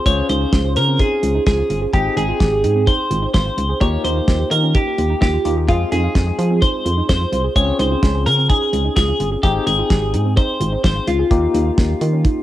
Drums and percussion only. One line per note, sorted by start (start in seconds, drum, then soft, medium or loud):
0.06 kick loud
0.06 closed hi-hat medium
0.29 closed hi-hat medium
0.53 kick loud
0.53 snare loud
0.53 closed hi-hat medium
0.76 closed hi-hat medium
1.00 kick loud
1.00 closed hi-hat medium
1.23 closed hi-hat medium
1.47 kick loud
1.47 snare loud
1.47 closed hi-hat medium
1.70 closed hi-hat medium
1.93 kick loud
1.93 closed hi-hat medium
2.17 closed hi-hat medium
2.40 kick loud
2.40 snare loud
2.40 closed hi-hat medium
2.64 closed hi-hat medium
2.87 kick loud
2.87 closed hi-hat medium
3.11 closed hi-hat medium
3.34 kick loud
3.34 snare loud
3.34 closed hi-hat medium
3.58 closed hi-hat medium
3.81 kick loud
3.81 closed hi-hat medium
4.05 closed hi-hat medium
4.28 kick loud
4.28 snare loud
4.28 closed hi-hat medium
4.51 closed hi-hat medium
4.75 kick loud
4.75 closed hi-hat medium
4.98 closed hi-hat medium
5.22 kick loud
5.22 snare loud
5.22 closed hi-hat medium
5.45 closed hi-hat medium
5.68 kick loud
5.68 closed hi-hat medium
5.92 closed hi-hat medium
6.15 kick loud
6.15 snare loud
6.15 closed hi-hat medium
6.39 closed hi-hat medium
6.62 kick loud
6.62 closed hi-hat medium
6.86 closed hi-hat medium
7.09 kick loud
7.09 snare loud
7.09 closed hi-hat medium
7.33 closed hi-hat medium
7.56 kick loud
7.56 closed hi-hat medium
7.79 closed hi-hat medium
8.03 kick loud
8.03 snare loud
8.03 closed hi-hat medium
8.26 closed hi-hat medium
8.50 kick loud
8.50 closed hi-hat medium
8.73 closed hi-hat medium
8.96 kick loud
8.96 snare loud
8.96 closed hi-hat medium
9.20 closed hi-hat medium
9.43 kick loud
9.43 closed hi-hat medium
9.67 closed hi-hat medium
9.90 kick loud
9.90 snare loud
9.90 closed hi-hat medium
10.14 closed hi-hat medium
10.37 kick loud
10.37 closed hi-hat medium
10.61 closed hi-hat medium
10.84 kick loud
10.84 snare loud
10.84 closed hi-hat medium
11.08 closed hi-hat medium
11.31 kick loud
11.31 closed hi-hat medium
11.54 closed hi-hat medium
11.78 kick loud
11.78 snare loud
11.78 closed hi-hat medium
12.01 closed hi-hat medium
12.25 kick loud
12.25 closed hi-hat medium